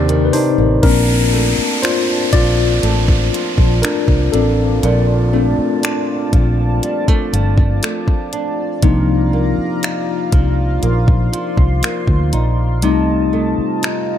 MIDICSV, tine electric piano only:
0, 0, Header, 1, 2, 480
1, 0, Start_track
1, 0, Tempo, 1000000
1, 398, Time_signature, 4, 2, 24, 8
1, 6807, End_track
2, 0, Start_track
2, 0, Title_t, "Tine electric piano"
2, 0, Program_c, 0, 4
2, 0, Control_c, 0, 64, 127
2, 0, Note_on_c, 0, 48, 55
2, 0, Note_on_c, 0, 60, 54
2, 0, Note_on_c, 0, 63, 53
2, 0, Note_on_c, 0, 67, 78
2, 0, Note_on_c, 0, 70, 52
2, 0, Note_on_c, 0, 74, 65
2, 113, Note_off_c, 0, 67, 0
2, 121, Note_on_c, 0, 71, 76
2, 156, Note_off_c, 0, 71, 0
2, 158, Note_on_c, 0, 72, 98
2, 161, Note_off_c, 0, 63, 0
2, 166, Note_on_c, 0, 63, 80
2, 386, Note_off_c, 0, 63, 0
2, 392, Note_off_c, 0, 70, 0
2, 396, Note_off_c, 0, 48, 0
2, 397, Note_off_c, 0, 60, 0
2, 397, Note_on_c, 0, 70, 97
2, 400, Note_on_c, 0, 58, 53
2, 402, Note_off_c, 0, 74, 0
2, 402, Note_on_c, 0, 60, 52
2, 404, Control_c, 0, 64, 0
2, 406, Note_off_c, 0, 72, 0
2, 406, Note_on_c, 0, 62, 70
2, 501, Control_c, 0, 64, 127
2, 863, Note_off_c, 0, 62, 0
2, 875, Note_on_c, 0, 72, 87
2, 885, Note_on_c, 0, 65, 70
2, 892, Note_off_c, 0, 70, 0
2, 984, Note_off_c, 0, 72, 0
2, 992, Note_off_c, 0, 65, 0
2, 1117, Note_on_c, 0, 74, 95
2, 1126, Note_on_c, 0, 65, 72
2, 1819, Note_off_c, 0, 74, 0
2, 1823, Note_off_c, 0, 65, 0
2, 1834, Note_on_c, 0, 70, 77
2, 1844, Note_on_c, 0, 62, 63
2, 1943, Note_off_c, 0, 70, 0
2, 1951, Note_off_c, 0, 62, 0
2, 2075, Note_on_c, 0, 69, 77
2, 2080, Note_off_c, 0, 60, 0
2, 2085, Note_on_c, 0, 60, 60
2, 2300, Note_off_c, 0, 58, 0
2, 2555, Note_off_c, 0, 60, 0
2, 2559, Note_on_c, 0, 57, 52
2, 2560, Note_on_c, 0, 60, 49
2, 2564, Note_on_c, 0, 62, 62
2, 2878, Note_off_c, 0, 57, 0
2, 2879, Note_off_c, 0, 60, 0
2, 2880, Note_off_c, 0, 62, 0
2, 3977, Note_off_c, 0, 69, 0
2, 4238, Note_on_c, 0, 53, 56
2, 4239, Note_on_c, 0, 58, 51
2, 4241, Note_on_c, 0, 62, 52
2, 4244, Control_c, 0, 64, 0
2, 4244, Note_on_c, 0, 63, 62
2, 4323, Control_c, 0, 64, 127
2, 4557, Note_off_c, 0, 53, 0
2, 4558, Note_off_c, 0, 58, 0
2, 4559, Note_off_c, 0, 62, 0
2, 4560, Note_off_c, 0, 63, 0
2, 6157, Note_on_c, 0, 55, 54
2, 6159, Note_on_c, 0, 57, 51
2, 6162, Note_on_c, 0, 63, 63
2, 6165, Control_c, 0, 64, 0
2, 6236, Control_c, 0, 64, 127
2, 6477, Note_off_c, 0, 55, 0
2, 6478, Note_off_c, 0, 57, 0
2, 6479, Note_off_c, 0, 63, 0
2, 6807, End_track
0, 0, End_of_file